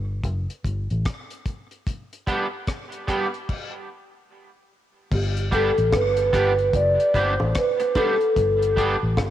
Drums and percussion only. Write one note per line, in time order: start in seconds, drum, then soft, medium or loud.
0.23 kick loud
0.23 closed hi-hat medium
0.50 closed hi-hat soft
0.64 kick medium
0.64 closed hi-hat medium
0.90 closed hi-hat soft
1.05 kick loud
1.05 cross-stick loud
1.05 closed hi-hat medium
1.30 closed hi-hat soft
1.46 kick medium
1.46 closed hi-hat medium
1.71 closed hi-hat soft
1.87 kick loud
1.87 closed hi-hat medium
2.13 closed hi-hat soft
2.27 kick medium
2.27 closed hi-hat medium
2.27 high bongo soft
2.67 kick loud
2.67 cross-stick medium
2.67 closed hi-hat medium
2.67 high bongo medium
2.92 closed hi-hat soft
3.08 kick medium
3.08 cross-stick medium
3.08 closed hi-hat medium
3.08 low bongo medium
3.34 closed hi-hat soft
3.49 kick loud
3.49 crash medium
5.12 kick loud
5.12 crash loud
5.37 closed hi-hat soft
5.52 kick medium
5.52 closed hi-hat medium
5.78 closed hi-hat soft
5.93 kick loud
5.93 cross-stick loud
5.93 closed hi-hat medium
5.93 high bongo medium
6.17 closed hi-hat medium
6.33 kick medium
6.33 cross-stick medium
6.33 closed hi-hat medium
6.59 closed hi-hat soft
6.74 kick loud
6.74 closed hi-hat loud
7.00 closed hi-hat medium
7.14 kick loud
7.14 closed hi-hat medium
7.40 high bongo medium
7.55 kick loud
7.55 cross-stick loud
7.55 closed hi-hat loud
7.80 closed hi-hat soft
7.95 kick loud
7.95 closed hi-hat medium
7.95 high bongo medium
7.95 low bongo medium
8.21 closed hi-hat soft
8.36 kick loud
8.36 closed hi-hat loud
8.62 closed hi-hat medium
8.77 kick loud
8.77 closed hi-hat medium
9.17 kick loud
9.17 cross-stick loud
9.17 closed hi-hat medium
9.17 high bongo medium